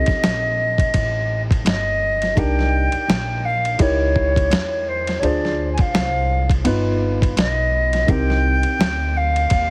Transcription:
0.00 2.32 C4 medium
0.00 2.33 D#4 medium
0.00 2.33 G4 medium
0.00 2.33 A4 medium
0.00 1.42 D#5 medium
0.06 muted upright bass stroke soft
0.06 kick medium
0.06 snare soft
0.06 ride medium
0.23 0.91 A#1 medium
0.23 snare loud
0.23 hi-hat pedal soft
0.23 ride medium
0.78 kick medium
0.78 ride medium
0.94 1.62 A1 medium
0.94 kick medium
0.94 ride medium
1.51 kick medium
1.51 ride medium
1.65 2.33 G1 medium
1.65 2.39 D#5 medium
1.65 snare loud
1.65 hi-hat pedal medium
1.65 ride medium
2.22 snare soft
2.22 ride medium
2.35 2.90 C2 medium
2.35 3.76 D4 medium
2.35 3.76 D#4 medium
2.35 3.77 G4 medium
2.35 3.77 A#4 medium
2.35 3.46 G5 loud
2.35 kick loud
2.35 ride medium
2.59 snare soft
2.92 muted upright bass stroke soft
2.92 ride medium
3.08 3.76 A#1 medium
3.08 snare medium
3.08 hi-hat pedal soft
3.08 ride medium
3.45 3.82 F5 medium
3.65 ride soft
3.78 4.48 C#2 medium
3.78 5.19 D#4 medium
3.78 5.19 E4 medium
3.78 5.20 G4 medium
3.78 5.20 A#4 medium
3.78 4.89 C#5 medium
3.78 kick medium
3.78 ride medium
4.16 kick medium
4.36 kick medium
4.36 ride medium
4.50 5.19 E2 medium
4.50 snare loud
4.50 hi-hat pedal soft
4.50 ride medium
4.88 5.20 C5 medium
5.07 snare soft
5.07 ride medium
5.19 5.76 D2 medium
5.19 6.62 D4 medium
5.19 6.63 F4 medium
5.19 5.25 C#5 medium
5.23 6.63 G#4 medium
5.23 6.64 C5 medium
5.23 5.71 D5 medium
5.23 ride medium
5.45 snare soft
5.72 5.82 G#5 medium
5.78 6.51 F5 medium
5.78 muted upright bass stroke soft
5.78 kick medium
5.78 ride medium
5.94 6.62 C2 medium
5.94 snare medium
5.94 hi-hat pedal soft
5.94 ride medium
6.50 kick medium
6.50 ride medium
6.64 7.33 G1 loud
6.64 8.05 B3 medium
6.64 8.05 D#4 medium
6.64 8.06 F4 medium
6.64 8.06 B4 medium
6.64 ride medium
7.22 kick medium
7.22 ride medium
7.37 8.05 B1 medium
7.37 8.11 D#5 medium
7.37 snare loud
7.37 hi-hat pedal soft
7.37 ride medium
7.93 snare soft
7.93 ride medium
8.07 8.62 C2 loud
8.07 9.70 C4 medium
8.07 9.70 D#4 medium
8.07 9.70 G4 medium
8.07 9.70 A#4 medium
8.07 9.18 G5 loud
8.07 kick loud
8.07 ride medium
8.30 snare soft
8.63 muted upright bass stroke soft
8.63 ride medium
8.79 9.47 D2 medium
8.79 snare loud
8.79 hi-hat pedal soft
8.79 ride medium
9.17 9.70 F5 loud
9.36 ride medium
9.50 9.70 D#2 medium
9.50 kick medium
9.50 ride medium

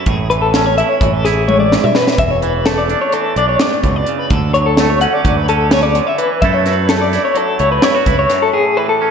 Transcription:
0.00 0.55 A3 medium
0.05 0.81 A1 medium
0.05 1.48 A2 medium
0.05 0.30 G#4 medium
0.05 kick loud
0.05 closed hi-hat medium
0.30 1.02 E3 medium
0.30 0.41 B4 medium
0.30 closed hi-hat medium
0.42 0.66 A4 medium
0.54 2.17 C#4 medium
0.54 snare medium
0.54 closed hi-hat medium
0.66 0.77 C#5 medium
0.78 1.25 E4 medium
0.78 0.89 E5 medium
0.78 closed hi-hat medium
0.89 1.13 C#5 medium
1.01 1.76 A1 medium
1.01 2.42 E3 medium
1.01 kick loud
1.01 closed hi-hat medium
1.13 1.25 A4 medium
1.25 2.17 E4 medium
1.25 1.48 G#4 medium
1.25 snare soft
1.25 closed hi-hat medium
1.48 1.72 A2 medium
1.48 1.59 C#5 medium
1.48 high tom medium
1.60 1.84 D5 medium
1.72 1.95 G#2 medium
1.72 snare medium
1.84 1.96 E5 medium
1.84 mid tom medium
1.95 2.19 F#2 medium
1.95 2.19 B4 medium
1.95 snare medium
2.07 snare medium
2.18 2.93 E1 loud
2.18 4.31 E2 medium
2.18 2.31 E5 medium
2.18 kick loud
2.18 closed hi-hat medium
2.31 2.42 C#5 medium
2.42 3.12 E3 medium
2.42 2.66 B4 medium
2.42 closed hi-hat medium
2.66 4.79 A3 medium
2.66 2.78 A4 medium
2.66 snare medium
2.66 closed hi-hat medium
2.78 3.01 D5 medium
2.89 3.37 D4 medium
2.89 closed hi-hat soft
3.02 3.13 C#5 medium
3.12 4.31 E3 medium
3.12 3.37 A4 medium
3.12 closed hi-hat medium
3.36 3.55 B1 medium
3.36 4.29 D4 medium
3.36 3.48 D5 medium
3.36 closed hi-hat medium
3.49 3.61 C#5 medium
3.59 3.84 A2 medium
3.59 3.84 D5 medium
3.59 snare loud
3.59 closed hi-hat medium
3.83 4.03 C#2 medium
3.83 4.08 B2 medium
3.83 3.96 C#5 medium
3.83 kick medium
3.83 closed hi-hat medium
3.96 4.19 D5 medium
4.06 4.32 C#3 medium
4.06 closed hi-hat medium
4.19 4.31 B4 medium
4.30 5.05 D2 loud
4.30 5.71 D3 medium
4.30 4.54 A4 medium
4.30 kick loud
4.30 closed hi-hat medium
4.54 5.25 F#3 medium
4.54 4.66 C#5 medium
4.54 closed hi-hat medium
4.66 4.90 A4 medium
4.77 6.43 A3 medium
4.77 snare medium
4.77 closed hi-hat medium
4.90 5.01 C#5 medium
5.01 5.49 C#4 medium
5.01 5.13 F#5 medium
5.01 closed hi-hat medium
5.13 5.37 D5 medium
5.25 5.99 D2 medium
5.25 6.18 F#3 medium
5.25 kick loud
5.25 closed hi-hat medium
5.37 5.48 B4 medium
5.48 6.44 C#4 medium
5.48 5.71 A4 medium
5.48 closed hi-hat medium
5.71 5.95 C#3 medium
5.71 5.82 C#5 medium
5.71 snare loud
5.71 closed hi-hat medium
5.83 6.07 D5 medium
5.95 6.19 D3 medium
5.95 closed hi-hat medium
6.07 6.19 E5 medium
6.18 6.42 E3 medium
6.18 6.42 B4 medium
6.18 closed hi-hat medium
6.42 8.28 F#2 medium
6.42 7.17 F#2 loud
6.42 6.65 F#3 medium
6.42 6.90 A3 medium
6.42 7.12 E4 medium
6.42 7.83 A4 medium
6.42 6.54 E5 medium
6.42 kick loud
6.42 closed hi-hat medium
6.54 6.66 C#5 medium
6.66 7.33 F#3 medium
6.66 6.89 B4 medium
6.66 snare soft
6.66 closed hi-hat medium
6.89 9.01 A3 medium
6.89 7.01 A4 medium
6.89 snare loud
6.89 closed hi-hat medium
7.01 7.25 D5 medium
7.13 7.59 E4 medium
7.13 snare soft
7.13 closed hi-hat medium
7.25 7.37 C#5 medium
7.34 8.50 F#3 medium
7.34 7.60 A4 medium
7.34 closed hi-hat medium
7.59 7.78 C#2 medium
7.59 7.83 E4 medium
7.59 7.71 C#5 medium
7.59 closed hi-hat medium
7.72 7.83 B4 medium
7.82 7.95 E4 medium
7.82 8.07 C#5 medium
7.82 snare loud
7.82 closed hi-hat medium
7.95 8.54 F#4 medium
8.06 8.25 C#2 medium
8.06 9.11 E4 medium
8.06 8.18 B4 medium
8.06 kick medium
8.06 closed hi-hat medium
8.19 8.42 C#5 medium
8.29 8.50 F#2 medium
8.29 snare soft
8.29 closed hi-hat medium
8.42 8.53 A4 medium
8.53 9.11 A2 medium
8.53 8.77 G#4 medium
8.77 9.11 E3 medium
8.77 8.89 B4 medium
8.89 9.11 A4 medium
9.02 9.11 C#4 medium

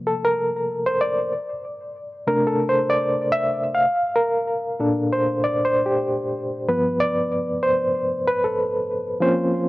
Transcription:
0.00 1.34 C3 soft
0.00 1.34 F3 soft
0.00 1.34 A#3 soft
0.07 0.24 A4 medium
0.25 0.89 A#4 medium
0.86 1.00 C5 medium
1.01 1.60 D5 medium
2.27 3.17 C3 medium
2.27 3.18 A3 soft
2.27 3.18 D4 medium
2.27 2.47 A#4 medium
2.47 2.57 A4 medium
2.69 2.91 C5 medium
2.90 3.33 D5 loud
3.32 3.75 E5 medium
3.75 4.18 F5 loud
4.16 5.13 A#4 medium
4.80 6.65 A#2 medium
4.80 6.65 D4 medium
4.80 6.65 A4 medium
5.13 5.41 C5 medium
5.44 5.65 D5 medium
5.65 5.86 C5 medium
5.86 6.14 G4 medium
6.68 7.11 G2 soft
6.68 7.11 F3 soft
6.68 7.12 B3 medium
6.68 7.01 B4 medium
7.00 7.65 D5 medium
7.63 8.28 C5 loud
8.27 8.44 B4 medium
8.44 8.73 A4 medium
9.20 9.69 F3 medium
9.20 9.69 A#3 medium
9.20 9.69 C4 medium
9.20 9.69 C#4 medium
9.20 9.69 F4 medium
9.20 9.69 C5 medium

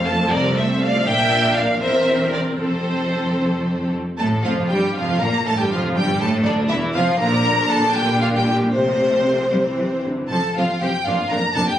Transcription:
0.00 0.19 F1 medium
0.00 0.20 F2 medium
0.00 1.06 A4 medium
0.06 0.19 A3 medium
0.06 0.14 F5 medium
0.06 0.31 A5 loud
0.19 0.32 F3 medium
0.30 0.93 C2 medium
0.30 0.94 C2 medium
0.30 0.44 C3 medium
0.30 0.56 A#4 medium
0.30 0.56 D5 loud
0.44 0.56 F3 medium
0.56 0.69 A3 medium
0.56 0.81 C5 medium
0.56 0.81 E5 medium
0.69 0.81 C4 medium
0.80 0.94 A3 medium
0.80 1.06 D5 loud
0.80 1.06 F5 loud
0.94 1.06 F3 medium
1.05 1.77 A#1 medium
1.05 1.77 A#2 medium
1.05 1.77 D4 medium
1.05 1.77 A#4 medium
1.05 1.55 E5 loud
1.05 1.55 G5 loud
1.54 1.81 D5 loud
1.54 1.81 F5 loud
1.80 2.60 E1 medium
1.80 2.60 E2 medium
1.80 2.58 C4 medium
1.80 2.58 A#4 medium
1.80 2.32 C5 loud
1.80 2.32 E5 loud
2.32 2.41 A#4 medium
2.32 2.40 D5 medium
2.59 3.96 F1 medium
2.59 3.96 F2 medium
2.59 3.96 C4 medium
2.59 3.99 A4 medium
2.59 3.90 A4 medium
2.59 3.91 C5 medium
4.19 4.43 A1 medium
4.19 4.43 A2 medium
4.19 4.27 A3 medium
4.19 4.43 A4 medium
4.19 4.27 A5 medium
4.44 4.70 F1 medium
4.44 4.70 F2 medium
4.44 4.70 F3 medium
4.44 4.70 F4 medium
4.44 4.52 F5 medium
4.69 4.96 G1 medium
4.69 4.96 G2 medium
4.69 4.95 G3 medium
4.69 4.95 G4 medium
4.69 4.95 G5 medium
4.94 5.21 F1 medium
4.94 5.21 F2 medium
4.94 5.21 F3 medium
4.94 5.20 F4 medium
4.94 5.20 F5 medium
5.21 5.46 A#1 medium
5.21 5.47 A#2 medium
5.21 5.46 A#3 medium
5.21 5.29 A#4 medium
5.21 5.47 A#5 loud
5.46 5.59 A1 medium
5.46 5.59 A2 medium
5.46 5.59 A3 medium
5.46 5.51 A4 medium
5.46 5.59 A5 medium
5.59 5.72 G2 medium
5.59 5.72 G3 medium
5.59 5.71 G4 medium
5.59 5.72 G5 medium
5.71 5.96 F1 medium
5.71 5.97 F2 medium
5.71 5.97 F3 medium
5.71 5.96 F4 medium
5.71 5.79 F5 loud
5.96 6.21 G1 medium
5.96 6.21 G2 loud
5.96 6.21 G3 medium
5.96 6.21 G4 medium
5.96 6.21 G5 loud
6.21 6.45 A1 medium
6.21 6.46 A2 loud
6.21 6.45 A3 loud
6.21 6.46 A4 medium
6.21 6.29 A5 loud
6.45 6.70 D2 loud
6.45 6.71 D2 loud
6.45 6.54 D3 loud
6.45 6.70 D4 loud
6.45 6.53 D5 loud
6.69 6.94 E1 medium
6.69 6.95 E2 medium
6.69 6.94 E3 medium
6.69 6.95 E4 medium
6.69 6.77 E5 medium
6.94 7.02 F1 loud
6.94 7.03 F2 loud
6.94 7.19 F3 loud
6.94 7.19 F4 medium
6.94 7.19 F5 loud
7.18 7.82 A#1 loud
7.18 7.82 A#2 medium
7.18 7.30 D3 medium
7.18 8.68 D4 medium
7.18 7.68 A#4 loud
7.18 7.68 A#5 loud
7.31 7.44 F3 medium
7.44 7.56 D3 medium
7.56 7.69 F3 medium
7.69 7.82 D3 medium
7.69 7.94 A4 loud
7.69 7.94 A5 loud
7.82 7.94 F3 medium
7.94 8.59 A#1 medium
7.94 8.59 A#2 loud
7.94 8.06 D3 medium
7.94 8.20 G4 loud
7.94 8.20 G5 loud
8.07 8.20 G3 medium
8.20 8.33 D3 medium
8.20 8.33 F4 medium
8.20 8.26 F5 loud
8.33 8.46 G3 medium
8.33 8.44 G4 medium
8.33 8.46 G5 loud
8.45 8.59 D3 medium
8.45 8.71 G4 medium
8.45 8.55 G5 loud
8.59 8.72 G3 medium
8.72 9.38 C2 medium
8.72 9.38 C3 medium
8.72 8.84 C3 medium
8.72 9.51 A3 medium
8.72 10.01 C4 medium
8.72 10.02 C5 loud
8.85 8.98 F3 medium
8.98 9.11 C3 medium
9.12 9.25 F3 medium
9.25 9.38 C3 medium
9.38 9.51 F3 medium
9.51 10.18 C2 medium
9.51 9.63 C3 medium
9.51 9.59 G3 medium
9.51 10.09 C4 medium
9.64 9.78 E3 medium
9.77 9.91 C3 medium
9.77 9.86 E3 medium
9.91 10.04 E3 medium
10.04 10.17 C3 medium
10.04 10.12 D3 medium
10.17 10.30 E3 medium
10.30 10.38 F1 medium
10.30 10.39 F2 medium
10.30 10.38 F3 medium
10.30 10.38 C4 medium
10.30 10.54 A4 medium
10.30 10.54 A5 loud
10.56 10.64 F1 medium
10.56 10.65 F2 medium
10.56 10.64 F3 medium
10.56 10.65 C4 medium
10.56 10.81 F4 medium
10.56 10.81 F5 medium
10.81 10.90 F1 medium
10.81 10.90 F2 medium
10.81 10.90 F3 medium
10.81 10.90 C4 medium
10.81 10.90 G4 medium
10.81 11.06 G5 loud
11.05 11.14 F1 medium
11.05 11.15 F2 medium
11.05 11.15 A#3 medium
11.05 11.15 D4 medium
11.05 11.31 F4 medium
11.05 11.31 F5 medium
11.29 11.39 F1 medium
11.29 11.40 F2 medium
11.29 11.39 A#3 medium
11.29 11.39 D4 medium
11.29 11.39 A#4 medium
11.29 11.55 A#5 loud
11.54 11.64 F1 medium
11.54 11.65 F2 medium
11.54 11.63 A#3 medium
11.54 11.64 D4 medium
11.54 11.60 A4 medium
11.54 11.67 A5 loud
11.68 11.73 G4 medium
11.68 11.79 G5 loud

